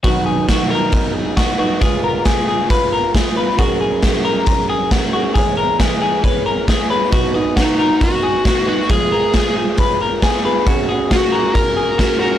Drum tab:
HH |x-x-x-x-|x-x-x-x-|x-x-x-x-|x-x-x-x-|
SD |--o---o-|--o---o-|--o---o-|--o---o-|
BD |o-o-o-o-|o-o-o-o-|o-o-o-o-|o-o-o-o-|

HH |x-x-x-x-|x-x-x-x-|x-x-x-x-|
SD |--o---o-|--o---o-|--o---o-|
BD |o-o-o-o-|o-o-o-o-|o-o-o-o-|